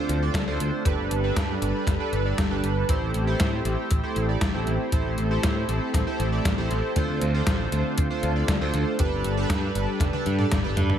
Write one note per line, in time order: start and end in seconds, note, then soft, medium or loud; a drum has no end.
0.00 0.84 D3 medium
0.00 0.82 A3 medium
0.00 0.82 C4 medium
0.00 0.19 D4 medium
0.00 0.19 F4 medium
0.00 0.84 F4 medium
0.00 0.19 A4 medium
0.00 0.19 C5 loud
0.09 0.28 D2 medium
0.09 closed hi-hat medium
0.22 0.42 D4 medium
0.22 0.42 F4 medium
0.22 0.42 A4 medium
0.22 0.42 D5 medium
0.34 0.44 D2 loud
0.34 kick loud
0.34 snare loud
0.34 closed hi-hat loud
0.47 0.57 D2 loud
0.47 0.83 D4 medium
0.47 0.83 F4 medium
0.47 0.83 A4 medium
0.47 0.83 C5 loud
0.60 0.70 D2 loud
0.60 closed hi-hat medium
0.85 0.95 G1 loud
0.85 2.87 G3 medium
0.85 2.87 D4 medium
0.85 1.21 D4 medium
0.85 1.21 G4 medium
0.85 2.87 A4 medium
0.85 1.21 A4 medium
0.85 2.87 B4 medium
0.85 1.21 B4 loud
0.85 kick loud
0.85 closed hi-hat medium
0.98 1.08 G1 medium
1.11 1.30 G1 medium
1.11 closed hi-hat medium
1.24 1.59 D4 loud
1.24 1.59 G4 medium
1.24 1.59 A4 medium
1.24 1.59 B4 loud
1.36 1.55 G2 medium
1.36 kick loud
1.36 snare loud
1.36 closed hi-hat medium
1.62 1.71 G1 loud
1.62 1.97 D4 medium
1.62 1.97 G4 medium
1.62 1.97 A4 medium
1.62 1.97 B4 medium
1.62 closed hi-hat medium
1.87 1.97 G1 medium
1.87 kick loud
1.87 snare medium
1.87 closed hi-hat medium
2.00 2.22 D4 medium
2.00 2.22 G4 medium
2.00 2.22 A4 medium
2.00 2.22 B4 loud
2.13 2.32 G1 medium
2.13 closed hi-hat medium
2.25 2.45 D4 medium
2.25 2.45 G4 medium
2.25 2.45 A4 medium
2.25 2.45 D5 medium
2.38 2.48 G1 loud
2.38 kick loud
2.38 snare loud
2.38 closed hi-hat medium
2.50 2.60 G1 loud
2.50 2.86 D4 loud
2.50 2.86 G4 medium
2.50 2.86 A4 medium
2.50 2.86 B4 loud
2.63 2.83 G1 loud
2.63 closed hi-hat medium
2.89 2.98 A1 loud
2.89 8.95 A3 medium
2.89 8.95 C4 medium
2.89 3.24 E4 medium
2.89 3.24 G4 medium
2.89 4.91 G4 medium
2.89 3.24 A4 medium
2.89 3.24 C5 loud
2.89 kick loud
2.89 closed hi-hat medium
3.02 3.11 A1 medium
3.14 3.33 A1 medium
3.14 closed hi-hat medium
3.27 3.62 E4 loud
3.27 3.62 G4 medium
3.27 3.62 A4 medium
3.27 3.62 C5 loud
3.40 3.59 A2 loud
3.40 kick loud
3.40 snare loud
3.40 closed hi-hat medium
3.65 3.75 A1 loud
3.65 4.00 E4 medium
3.65 4.00 G4 medium
3.65 4.00 A4 medium
3.65 4.00 C5 medium
3.65 closed hi-hat medium
3.91 4.00 A1 medium
3.91 kick loud
3.91 closed hi-hat medium
4.03 4.26 E4 medium
4.03 4.26 G4 medium
4.03 4.26 A4 medium
4.03 4.26 C5 loud
4.16 4.35 A1 medium
4.16 closed hi-hat medium
4.29 4.49 E4 medium
4.29 4.49 G4 medium
4.29 4.49 A4 medium
4.29 4.49 D5 loud
4.41 4.51 A1 loud
4.41 kick loud
4.41 snare loud
4.41 closed hi-hat medium
4.54 4.64 A1 medium
4.54 4.89 E4 loud
4.54 4.89 G4 medium
4.54 4.89 A4 medium
4.54 4.89 C5 loud
4.67 4.77 A1 medium
4.67 closed hi-hat medium
4.92 5.02 A1 loud
4.92 5.28 E4 medium
4.92 5.28 G4 medium
4.92 5.28 A4 medium
4.92 6.94 A4 medium
4.92 5.28 C5 loud
4.92 kick loud
4.92 closed hi-hat medium
5.05 5.15 A1 medium
5.18 5.37 A1 medium
5.18 closed hi-hat medium
5.31 5.66 E4 loud
5.31 5.66 G4 loud
5.31 5.66 A4 medium
5.31 5.66 C5 loud
5.43 5.63 A2 loud
5.43 kick loud
5.43 snare loud
5.43 closed hi-hat medium
5.69 5.78 A1 loud
5.69 6.04 E4 medium
5.69 6.04 G4 medium
5.69 6.04 A4 medium
5.69 6.04 C5 medium
5.69 closed hi-hat medium
5.94 6.04 A1 medium
5.94 kick loud
5.94 snare medium
5.94 closed hi-hat medium
6.07 6.29 E4 medium
6.07 6.29 G4 medium
6.07 6.29 A4 medium
6.07 6.29 C5 loud
6.19 6.39 A1 medium
6.19 closed hi-hat medium
6.32 6.52 E4 medium
6.32 6.52 G4 medium
6.32 6.52 A4 medium
6.32 6.52 D5 medium
6.45 6.54 A1 loud
6.45 kick loud
6.45 snare loud
6.45 closed hi-hat medium
6.58 6.67 A1 medium
6.58 6.93 E4 loud
6.58 6.93 G4 medium
6.58 6.93 A4 medium
6.58 6.93 C5 loud
6.70 6.80 A1 loud
6.70 closed hi-hat medium
6.96 7.06 D2 loud
6.96 8.97 D3 medium
6.96 7.31 D4 medium
6.96 7.31 F4 medium
6.96 8.97 F4 medium
6.96 7.31 A4 medium
6.96 7.31 C5 loud
6.96 kick loud
6.96 closed hi-hat medium
7.09 7.18 D2 medium
7.21 7.40 D2 medium
7.21 closed hi-hat medium
7.34 7.69 D4 loud
7.34 7.69 F4 medium
7.34 7.69 A4 loud
7.34 7.69 C5 loud
7.47 7.66 A1 loud
7.47 kick loud
7.47 snare loud
7.47 closed hi-hat medium
7.72 7.82 D2 loud
7.72 8.07 D4 medium
7.72 8.07 F4 medium
7.72 8.07 A4 medium
7.72 8.07 C5 medium
7.72 closed hi-hat medium
7.98 8.07 D2 medium
7.98 kick loud
7.98 closed hi-hat medium
8.10 8.33 D4 medium
8.10 8.33 F4 medium
8.10 8.33 A4 medium
8.10 8.33 C5 loud
8.23 8.42 D2 medium
8.23 closed hi-hat medium
8.36 8.55 D4 medium
8.36 8.55 F4 medium
8.36 8.55 A4 medium
8.36 8.55 D5 medium
8.48 8.58 D2 loud
8.48 kick loud
8.48 snare loud
8.48 closed hi-hat medium
8.61 8.71 D2 loud
8.61 8.96 D4 loud
8.61 8.96 F4 medium
8.61 8.96 A4 medium
8.61 8.96 C5 loud
8.74 8.83 D2 loud
8.74 closed hi-hat medium
8.99 9.09 G1 loud
8.99 10.99 G3 medium
8.99 10.99 D4 medium
8.99 9.34 D4 loud
8.99 9.34 G4 medium
8.99 10.99 A4 medium
8.99 9.34 A4 medium
8.99 9.34 B4 loud
8.99 10.99 B4 medium
8.99 kick loud
8.99 closed hi-hat medium
9.12 9.21 G1 medium
9.24 9.44 G1 medium
9.24 closed hi-hat medium
9.37 9.72 D4 loud
9.37 9.72 G4 medium
9.37 9.72 A4 loud
9.37 9.72 B4 loud
9.50 9.69 G2 loud
9.50 kick loud
9.50 snare loud
9.50 closed hi-hat medium
9.75 9.85 G1 loud
9.75 10.11 D4 medium
9.75 10.11 G4 medium
9.75 10.11 A4 medium
9.75 10.11 B4 medium
9.75 closed hi-hat medium
10.00 10.10 G1 medium
10.00 kick loud
10.00 snare medium
10.00 closed hi-hat loud
10.00 high tom medium
10.13 10.36 D4 medium
10.13 10.36 G4 medium
10.13 10.36 A4 medium
10.13 10.36 B4 loud
10.13 high tom medium
10.26 10.45 G2 medium
10.26 closed hi-hat medium
10.39 10.59 D4 medium
10.39 10.59 G4 medium
10.39 10.59 A4 medium
10.39 10.59 D5 loud
10.39 mid tom medium
10.52 10.62 G1 loud
10.52 kick loud
10.52 snare loud
10.52 closed hi-hat medium
10.52 mid tom medium
10.64 10.74 G1 loud
10.64 10.99 D4 loud
10.64 10.99 G4 medium
10.64 10.99 A4 medium
10.64 10.99 B4 loud
10.77 10.96 G2 loud
10.77 closed hi-hat medium
10.77 mid tom loud
10.90 mid tom medium